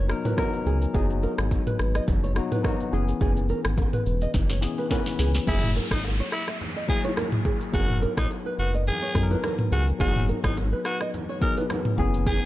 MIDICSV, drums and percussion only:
0, 0, Header, 1, 2, 480
1, 0, Start_track
1, 0, Tempo, 566038
1, 801, Time_signature, 4, 2, 24, 8
1, 10561, End_track
2, 0, Start_track
2, 0, Title_t, "Drums"
2, 79, Note_on_c, 9, 82, 56
2, 80, Note_on_c, 9, 37, 96
2, 164, Note_off_c, 9, 82, 0
2, 165, Note_off_c, 9, 37, 0
2, 211, Note_on_c, 9, 82, 74
2, 213, Note_on_c, 9, 61, 88
2, 214, Note_on_c, 9, 45, 87
2, 296, Note_off_c, 9, 82, 0
2, 298, Note_off_c, 9, 61, 0
2, 299, Note_off_c, 9, 45, 0
2, 319, Note_on_c, 9, 82, 79
2, 321, Note_on_c, 9, 36, 86
2, 321, Note_on_c, 9, 37, 90
2, 325, Note_on_c, 9, 60, 84
2, 325, Note_on_c, 9, 61, 83
2, 325, Note_on_c, 9, 64, 85
2, 404, Note_off_c, 9, 82, 0
2, 406, Note_off_c, 9, 36, 0
2, 406, Note_off_c, 9, 37, 0
2, 410, Note_off_c, 9, 60, 0
2, 410, Note_off_c, 9, 61, 0
2, 410, Note_off_c, 9, 64, 0
2, 452, Note_on_c, 9, 82, 53
2, 537, Note_off_c, 9, 82, 0
2, 561, Note_on_c, 9, 82, 51
2, 646, Note_off_c, 9, 82, 0
2, 693, Note_on_c, 9, 82, 90
2, 778, Note_off_c, 9, 82, 0
2, 800, Note_on_c, 9, 82, 82
2, 801, Note_on_c, 9, 36, 123
2, 802, Note_on_c, 9, 64, 89
2, 885, Note_off_c, 9, 82, 0
2, 886, Note_off_c, 9, 36, 0
2, 887, Note_off_c, 9, 64, 0
2, 934, Note_on_c, 9, 82, 61
2, 1018, Note_off_c, 9, 82, 0
2, 1041, Note_on_c, 9, 82, 59
2, 1047, Note_on_c, 9, 60, 52
2, 1047, Note_on_c, 9, 61, 53
2, 1126, Note_off_c, 9, 82, 0
2, 1131, Note_off_c, 9, 60, 0
2, 1131, Note_off_c, 9, 61, 0
2, 1174, Note_on_c, 9, 37, 116
2, 1175, Note_on_c, 9, 82, 80
2, 1176, Note_on_c, 9, 60, 55
2, 1259, Note_off_c, 9, 37, 0
2, 1260, Note_off_c, 9, 82, 0
2, 1261, Note_off_c, 9, 60, 0
2, 1283, Note_on_c, 9, 36, 101
2, 1283, Note_on_c, 9, 82, 73
2, 1286, Note_on_c, 9, 60, 81
2, 1368, Note_off_c, 9, 36, 0
2, 1368, Note_off_c, 9, 82, 0
2, 1371, Note_off_c, 9, 60, 0
2, 1415, Note_on_c, 9, 82, 54
2, 1416, Note_on_c, 9, 45, 91
2, 1500, Note_off_c, 9, 45, 0
2, 1500, Note_off_c, 9, 82, 0
2, 1521, Note_on_c, 9, 37, 94
2, 1524, Note_on_c, 9, 82, 52
2, 1606, Note_off_c, 9, 37, 0
2, 1609, Note_off_c, 9, 82, 0
2, 1654, Note_on_c, 9, 82, 76
2, 1655, Note_on_c, 9, 37, 84
2, 1739, Note_off_c, 9, 37, 0
2, 1739, Note_off_c, 9, 82, 0
2, 1763, Note_on_c, 9, 36, 113
2, 1763, Note_on_c, 9, 82, 77
2, 1767, Note_on_c, 9, 64, 87
2, 1848, Note_off_c, 9, 36, 0
2, 1848, Note_off_c, 9, 82, 0
2, 1852, Note_off_c, 9, 64, 0
2, 1898, Note_on_c, 9, 82, 58
2, 1982, Note_off_c, 9, 82, 0
2, 2001, Note_on_c, 9, 82, 56
2, 2002, Note_on_c, 9, 37, 92
2, 2085, Note_off_c, 9, 82, 0
2, 2087, Note_off_c, 9, 37, 0
2, 2133, Note_on_c, 9, 61, 87
2, 2133, Note_on_c, 9, 82, 77
2, 2136, Note_on_c, 9, 45, 88
2, 2218, Note_off_c, 9, 61, 0
2, 2218, Note_off_c, 9, 82, 0
2, 2221, Note_off_c, 9, 45, 0
2, 2241, Note_on_c, 9, 82, 77
2, 2242, Note_on_c, 9, 36, 92
2, 2243, Note_on_c, 9, 37, 88
2, 2245, Note_on_c, 9, 60, 85
2, 2245, Note_on_c, 9, 61, 79
2, 2245, Note_on_c, 9, 64, 84
2, 2326, Note_off_c, 9, 36, 0
2, 2326, Note_off_c, 9, 82, 0
2, 2328, Note_off_c, 9, 37, 0
2, 2330, Note_off_c, 9, 60, 0
2, 2330, Note_off_c, 9, 61, 0
2, 2330, Note_off_c, 9, 64, 0
2, 2374, Note_on_c, 9, 82, 53
2, 2459, Note_off_c, 9, 82, 0
2, 2482, Note_on_c, 9, 82, 49
2, 2567, Note_off_c, 9, 82, 0
2, 2614, Note_on_c, 9, 82, 90
2, 2699, Note_off_c, 9, 82, 0
2, 2721, Note_on_c, 9, 82, 78
2, 2722, Note_on_c, 9, 36, 117
2, 2723, Note_on_c, 9, 64, 90
2, 2806, Note_off_c, 9, 36, 0
2, 2806, Note_off_c, 9, 82, 0
2, 2808, Note_off_c, 9, 64, 0
2, 2853, Note_on_c, 9, 82, 63
2, 2938, Note_off_c, 9, 82, 0
2, 2960, Note_on_c, 9, 82, 59
2, 2967, Note_on_c, 9, 60, 53
2, 2967, Note_on_c, 9, 61, 52
2, 3045, Note_off_c, 9, 82, 0
2, 3052, Note_off_c, 9, 60, 0
2, 3052, Note_off_c, 9, 61, 0
2, 3093, Note_on_c, 9, 37, 117
2, 3094, Note_on_c, 9, 82, 81
2, 3098, Note_on_c, 9, 60, 57
2, 3178, Note_off_c, 9, 37, 0
2, 3179, Note_off_c, 9, 82, 0
2, 3183, Note_off_c, 9, 60, 0
2, 3203, Note_on_c, 9, 36, 102
2, 3203, Note_on_c, 9, 82, 71
2, 3208, Note_on_c, 9, 60, 81
2, 3287, Note_off_c, 9, 82, 0
2, 3288, Note_off_c, 9, 36, 0
2, 3292, Note_off_c, 9, 60, 0
2, 3335, Note_on_c, 9, 45, 88
2, 3335, Note_on_c, 9, 82, 53
2, 3419, Note_off_c, 9, 82, 0
2, 3420, Note_off_c, 9, 45, 0
2, 3444, Note_on_c, 9, 46, 71
2, 3444, Note_on_c, 9, 82, 52
2, 3529, Note_off_c, 9, 46, 0
2, 3529, Note_off_c, 9, 82, 0
2, 3572, Note_on_c, 9, 82, 79
2, 3657, Note_off_c, 9, 82, 0
2, 3680, Note_on_c, 9, 38, 59
2, 3682, Note_on_c, 9, 82, 77
2, 3683, Note_on_c, 9, 36, 117
2, 3688, Note_on_c, 9, 64, 83
2, 3765, Note_off_c, 9, 38, 0
2, 3767, Note_off_c, 9, 82, 0
2, 3768, Note_off_c, 9, 36, 0
2, 3773, Note_off_c, 9, 64, 0
2, 3813, Note_on_c, 9, 38, 58
2, 3817, Note_on_c, 9, 82, 56
2, 3898, Note_off_c, 9, 38, 0
2, 3901, Note_off_c, 9, 82, 0
2, 3919, Note_on_c, 9, 82, 56
2, 3921, Note_on_c, 9, 38, 77
2, 4004, Note_off_c, 9, 82, 0
2, 4006, Note_off_c, 9, 38, 0
2, 4052, Note_on_c, 9, 82, 76
2, 4054, Note_on_c, 9, 61, 85
2, 4137, Note_off_c, 9, 82, 0
2, 4139, Note_off_c, 9, 61, 0
2, 4160, Note_on_c, 9, 82, 79
2, 4161, Note_on_c, 9, 36, 90
2, 4161, Note_on_c, 9, 38, 83
2, 4166, Note_on_c, 9, 60, 81
2, 4166, Note_on_c, 9, 61, 84
2, 4166, Note_on_c, 9, 64, 85
2, 4245, Note_off_c, 9, 82, 0
2, 4246, Note_off_c, 9, 36, 0
2, 4246, Note_off_c, 9, 38, 0
2, 4251, Note_off_c, 9, 60, 0
2, 4251, Note_off_c, 9, 61, 0
2, 4251, Note_off_c, 9, 64, 0
2, 4293, Note_on_c, 9, 82, 55
2, 4294, Note_on_c, 9, 38, 82
2, 4378, Note_off_c, 9, 38, 0
2, 4378, Note_off_c, 9, 82, 0
2, 4401, Note_on_c, 9, 38, 99
2, 4401, Note_on_c, 9, 46, 67
2, 4401, Note_on_c, 9, 82, 48
2, 4486, Note_off_c, 9, 38, 0
2, 4486, Note_off_c, 9, 46, 0
2, 4486, Note_off_c, 9, 82, 0
2, 4533, Note_on_c, 9, 38, 90
2, 4533, Note_on_c, 9, 82, 96
2, 4618, Note_off_c, 9, 38, 0
2, 4618, Note_off_c, 9, 82, 0
2, 4641, Note_on_c, 9, 82, 80
2, 4642, Note_on_c, 9, 36, 118
2, 4642, Note_on_c, 9, 49, 102
2, 4643, Note_on_c, 9, 64, 95
2, 4726, Note_off_c, 9, 36, 0
2, 4726, Note_off_c, 9, 82, 0
2, 4727, Note_off_c, 9, 49, 0
2, 4728, Note_off_c, 9, 64, 0
2, 4777, Note_on_c, 9, 45, 91
2, 4861, Note_off_c, 9, 45, 0
2, 4881, Note_on_c, 9, 82, 57
2, 4887, Note_on_c, 9, 60, 55
2, 4887, Note_on_c, 9, 61, 54
2, 4966, Note_off_c, 9, 82, 0
2, 4971, Note_off_c, 9, 60, 0
2, 4971, Note_off_c, 9, 61, 0
2, 5012, Note_on_c, 9, 36, 100
2, 5015, Note_on_c, 9, 37, 114
2, 5016, Note_on_c, 9, 82, 68
2, 5017, Note_on_c, 9, 60, 58
2, 5017, Note_on_c, 9, 61, 81
2, 5097, Note_off_c, 9, 36, 0
2, 5100, Note_off_c, 9, 37, 0
2, 5101, Note_off_c, 9, 60, 0
2, 5101, Note_off_c, 9, 61, 0
2, 5101, Note_off_c, 9, 82, 0
2, 5124, Note_on_c, 9, 82, 76
2, 5125, Note_on_c, 9, 60, 85
2, 5208, Note_off_c, 9, 82, 0
2, 5210, Note_off_c, 9, 60, 0
2, 5362, Note_on_c, 9, 37, 97
2, 5364, Note_on_c, 9, 82, 51
2, 5446, Note_off_c, 9, 37, 0
2, 5449, Note_off_c, 9, 82, 0
2, 5493, Note_on_c, 9, 82, 64
2, 5494, Note_on_c, 9, 37, 81
2, 5577, Note_off_c, 9, 82, 0
2, 5578, Note_off_c, 9, 37, 0
2, 5602, Note_on_c, 9, 82, 75
2, 5607, Note_on_c, 9, 64, 89
2, 5687, Note_off_c, 9, 82, 0
2, 5692, Note_off_c, 9, 64, 0
2, 5839, Note_on_c, 9, 82, 56
2, 5840, Note_on_c, 9, 36, 96
2, 5923, Note_off_c, 9, 82, 0
2, 5925, Note_off_c, 9, 36, 0
2, 5971, Note_on_c, 9, 82, 60
2, 5974, Note_on_c, 9, 61, 83
2, 6056, Note_off_c, 9, 82, 0
2, 6059, Note_off_c, 9, 61, 0
2, 6080, Note_on_c, 9, 82, 81
2, 6082, Note_on_c, 9, 37, 94
2, 6086, Note_on_c, 9, 60, 85
2, 6086, Note_on_c, 9, 61, 83
2, 6086, Note_on_c, 9, 64, 88
2, 6165, Note_off_c, 9, 82, 0
2, 6167, Note_off_c, 9, 37, 0
2, 6171, Note_off_c, 9, 60, 0
2, 6171, Note_off_c, 9, 61, 0
2, 6171, Note_off_c, 9, 64, 0
2, 6209, Note_on_c, 9, 45, 101
2, 6294, Note_off_c, 9, 45, 0
2, 6318, Note_on_c, 9, 36, 84
2, 6320, Note_on_c, 9, 82, 49
2, 6403, Note_off_c, 9, 36, 0
2, 6405, Note_off_c, 9, 82, 0
2, 6452, Note_on_c, 9, 82, 77
2, 6537, Note_off_c, 9, 82, 0
2, 6560, Note_on_c, 9, 36, 127
2, 6560, Note_on_c, 9, 82, 80
2, 6564, Note_on_c, 9, 64, 92
2, 6645, Note_off_c, 9, 36, 0
2, 6645, Note_off_c, 9, 82, 0
2, 6648, Note_off_c, 9, 64, 0
2, 6695, Note_on_c, 9, 45, 91
2, 6780, Note_off_c, 9, 45, 0
2, 6801, Note_on_c, 9, 82, 58
2, 6806, Note_on_c, 9, 60, 54
2, 6806, Note_on_c, 9, 61, 53
2, 6886, Note_off_c, 9, 82, 0
2, 6891, Note_off_c, 9, 60, 0
2, 6891, Note_off_c, 9, 61, 0
2, 6931, Note_on_c, 9, 36, 98
2, 6933, Note_on_c, 9, 37, 111
2, 6935, Note_on_c, 9, 60, 57
2, 6935, Note_on_c, 9, 61, 81
2, 6935, Note_on_c, 9, 82, 69
2, 7016, Note_off_c, 9, 36, 0
2, 7018, Note_off_c, 9, 37, 0
2, 7020, Note_off_c, 9, 60, 0
2, 7020, Note_off_c, 9, 61, 0
2, 7020, Note_off_c, 9, 82, 0
2, 7042, Note_on_c, 9, 82, 77
2, 7045, Note_on_c, 9, 60, 82
2, 7126, Note_off_c, 9, 82, 0
2, 7130, Note_off_c, 9, 60, 0
2, 7284, Note_on_c, 9, 82, 51
2, 7368, Note_off_c, 9, 82, 0
2, 7413, Note_on_c, 9, 82, 68
2, 7497, Note_off_c, 9, 82, 0
2, 7522, Note_on_c, 9, 82, 77
2, 7527, Note_on_c, 9, 64, 85
2, 7607, Note_off_c, 9, 82, 0
2, 7612, Note_off_c, 9, 64, 0
2, 7759, Note_on_c, 9, 82, 55
2, 7760, Note_on_c, 9, 36, 100
2, 7760, Note_on_c, 9, 37, 95
2, 7844, Note_off_c, 9, 82, 0
2, 7845, Note_off_c, 9, 36, 0
2, 7845, Note_off_c, 9, 37, 0
2, 7891, Note_on_c, 9, 82, 62
2, 7893, Note_on_c, 9, 61, 86
2, 7976, Note_off_c, 9, 82, 0
2, 7978, Note_off_c, 9, 61, 0
2, 8000, Note_on_c, 9, 82, 78
2, 8002, Note_on_c, 9, 37, 92
2, 8005, Note_on_c, 9, 60, 84
2, 8005, Note_on_c, 9, 61, 85
2, 8005, Note_on_c, 9, 64, 87
2, 8085, Note_off_c, 9, 82, 0
2, 8087, Note_off_c, 9, 37, 0
2, 8090, Note_off_c, 9, 60, 0
2, 8090, Note_off_c, 9, 61, 0
2, 8090, Note_off_c, 9, 64, 0
2, 8129, Note_on_c, 9, 45, 104
2, 8214, Note_off_c, 9, 45, 0
2, 8241, Note_on_c, 9, 82, 51
2, 8325, Note_off_c, 9, 82, 0
2, 8373, Note_on_c, 9, 82, 74
2, 8458, Note_off_c, 9, 82, 0
2, 8480, Note_on_c, 9, 82, 80
2, 8481, Note_on_c, 9, 36, 126
2, 8481, Note_on_c, 9, 64, 91
2, 8565, Note_off_c, 9, 36, 0
2, 8565, Note_off_c, 9, 82, 0
2, 8566, Note_off_c, 9, 64, 0
2, 8615, Note_on_c, 9, 45, 97
2, 8700, Note_off_c, 9, 45, 0
2, 8720, Note_on_c, 9, 82, 62
2, 8726, Note_on_c, 9, 60, 51
2, 8726, Note_on_c, 9, 61, 50
2, 8805, Note_off_c, 9, 82, 0
2, 8811, Note_off_c, 9, 60, 0
2, 8811, Note_off_c, 9, 61, 0
2, 8852, Note_on_c, 9, 36, 101
2, 8854, Note_on_c, 9, 37, 115
2, 8856, Note_on_c, 9, 60, 58
2, 8856, Note_on_c, 9, 61, 80
2, 8856, Note_on_c, 9, 82, 68
2, 8937, Note_off_c, 9, 36, 0
2, 8939, Note_off_c, 9, 37, 0
2, 8940, Note_off_c, 9, 82, 0
2, 8941, Note_off_c, 9, 60, 0
2, 8941, Note_off_c, 9, 61, 0
2, 8963, Note_on_c, 9, 82, 77
2, 8967, Note_on_c, 9, 60, 84
2, 9048, Note_off_c, 9, 82, 0
2, 9051, Note_off_c, 9, 60, 0
2, 9201, Note_on_c, 9, 37, 95
2, 9204, Note_on_c, 9, 82, 52
2, 9286, Note_off_c, 9, 37, 0
2, 9289, Note_off_c, 9, 82, 0
2, 9333, Note_on_c, 9, 82, 65
2, 9334, Note_on_c, 9, 37, 87
2, 9417, Note_off_c, 9, 82, 0
2, 9418, Note_off_c, 9, 37, 0
2, 9443, Note_on_c, 9, 82, 75
2, 9448, Note_on_c, 9, 64, 88
2, 9528, Note_off_c, 9, 82, 0
2, 9533, Note_off_c, 9, 64, 0
2, 9679, Note_on_c, 9, 82, 59
2, 9681, Note_on_c, 9, 36, 96
2, 9764, Note_off_c, 9, 82, 0
2, 9766, Note_off_c, 9, 36, 0
2, 9811, Note_on_c, 9, 82, 63
2, 9814, Note_on_c, 9, 61, 90
2, 9896, Note_off_c, 9, 82, 0
2, 9899, Note_off_c, 9, 61, 0
2, 9920, Note_on_c, 9, 82, 80
2, 9922, Note_on_c, 9, 37, 90
2, 9926, Note_on_c, 9, 60, 84
2, 9926, Note_on_c, 9, 61, 81
2, 9926, Note_on_c, 9, 64, 83
2, 10004, Note_off_c, 9, 82, 0
2, 10006, Note_off_c, 9, 37, 0
2, 10011, Note_off_c, 9, 60, 0
2, 10011, Note_off_c, 9, 61, 0
2, 10011, Note_off_c, 9, 64, 0
2, 10050, Note_on_c, 9, 45, 99
2, 10135, Note_off_c, 9, 45, 0
2, 10159, Note_on_c, 9, 36, 81
2, 10161, Note_on_c, 9, 82, 51
2, 10244, Note_off_c, 9, 36, 0
2, 10246, Note_off_c, 9, 82, 0
2, 10293, Note_on_c, 9, 82, 75
2, 10378, Note_off_c, 9, 82, 0
2, 10401, Note_on_c, 9, 36, 123
2, 10401, Note_on_c, 9, 82, 82
2, 10403, Note_on_c, 9, 64, 92
2, 10486, Note_off_c, 9, 36, 0
2, 10486, Note_off_c, 9, 82, 0
2, 10488, Note_off_c, 9, 64, 0
2, 10561, End_track
0, 0, End_of_file